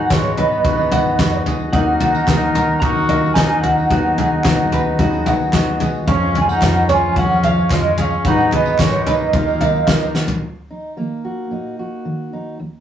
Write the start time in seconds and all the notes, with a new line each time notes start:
Already playing: G#1 G#2 D#3 F#3 G#3 B3 D#4 F#4 G#4 B4 D#5 F#5
0.09 G#2 F#3 G#3 B3 D#4 F#4 G#4 C#5 F5, kick, snare, clap, floor tom, tambourine
0.25 tambourine
0.37 F#3 B3 D#4 G#4 B4 D#5, floor tom
0.52 tambourine
0.64 G#2 D#3 F#3 B3 D#4 F#4 G#4 D#5, kick, floor tom, tambourine
0.78 tambourine
0.91 F#3 B3 D#4 G#4 D#5 F#5, floor tom, tambourine
1.19 F2 F#3 B3 D#4 F#4 G#4 D#5, kick, snare, clap, floor tom, tambourine
1.33 tambourine
1.46 D#2 F#3 B3 D#4 G#4, floor tom, tambourine
1.60 tambourine
1.73 D#2 D#3 F#3 A#3 D#4 F#4 A#4 D#5 F#5, kick, floor tom
2.00 F#4, floor tom, tambourine
2.15 tambourine
2.27 D#2 F#3 A#3 D#4 F#4 A#4 D#5, kick, snare, clap, floor tom, tambourine
2.42 tambourine
2.54 D#4 F#4 A#4, floor tom, tambourine
2.80 D#2 D#3 F#3 A#3 D#4 F#4 A#4 C#5 A#5, kick, floor tom
2.96 tambourine
3.09 F#3 A#3 D#4 A#4 D#5 F5, floor tom, tambourine
3.24 tambourine
3.34 D#2 F#3 A#3 D#4 A#4 D#5 G#5, kick, snare, clap, floor tom, tambourine
3.38 F#4 A#4
3.61 D#4 F#4 F#5, floor tom
3.78 tambourine
3.90 D#2 D#3 F#3 G#3 B3 D#4 F#4 G#4 D#5, kick, floor tom
4.18 G#4, floor tom, tambourine
4.44 D#2 F#3 B3 D#4 F#4 G#4 D#5, kick, snare, clap, floor tom, tambourine
4.72 B3 F#4 G#4 B4, floor tom, tambourine
4.99 D#2 D#3 F#3 B3 D#4 F#4 G#4 D#5, kick, floor tom
5.13 tambourine
5.26 F#3 B3 D#4 G#4 D#5 F#5, floor tom, tambourine
5.41 tambourine
5.53 D#2 F#3 B3 D#4 F#4 G#4 D#5, kick, snare, clap, floor tom, tambourine
5.80 B3 F#4 G#4, floor tom, tambourine
6.07 F1 F2 F3 G#3 C#4 F4 G#4 C#5 F5, kick, floor tom
6.35 G#4, floor tom, tambourine
6.42 F4 G#5
6.49 D#4 F#5, tambourine
6.62 F2 F3 G#3 C#4 F4 G#4 B4, kick, snare, clap, floor tom, tambourine
6.76 tambourine
6.89 C#4 F4 G#4 C#5 G#5, floor tom, tambourine
7.16 F2 F3 G#3 C#4 F4 G#4 C#5 F#5, kick, floor tom
7.31 tambourine
7.43 F3 G#3 C#4 G#4 C#5 F5, floor tom, tambourine
7.58 tambourine
7.70 F2 F3 G#3 C#4 F4 G#4 D#5, kick, snare, clap, floor tom, tambourine
7.98 C#4 G#4 F5, floor tom, tambourine
8.11 tambourine
8.25 G#1 G#2 D#3 F#3 B3 D#4 F#4 G#4 B4 F#5, kick, floor tom, tambourine
8.38 tambourine
8.52 B3 G#4 D#5, clap, floor tom, tambourine
8.65 tambourine
8.79 G#2 F#3 G#3 B3 D#4 F#4 G#4 A#4 C#5, kick, snare, clap, floor tom, tambourine
9.06 F#3 A#3 B3 D#4 G#4 B4 D#5, floor tom, tambourine
9.20 tambourine
9.33 D#2 D#3 F#3 A#3 D#4 F4 A#4, kick, floor tom, tambourine
9.48 tambourine
9.60 F#3 A#3 D#4 F4 A#4 F5, floor tom, tambourine
9.75 tambourine
9.87 D#2 F#3 A#3 D#4 F4 A#4, kick, snare, clap, floor tom, tambourine
10.03 tambourine
10.15 D#4 F4 F#4 A#4, snare, tambourine
10.28 floor tom, tambourine
10.42 D#2
10.71 D#4
10.97 D#3 A#3
11.25 F#4
11.51 A#2 D#4
11.79 F#4
12.05 D#3
12.33 D#4
12.59 D#2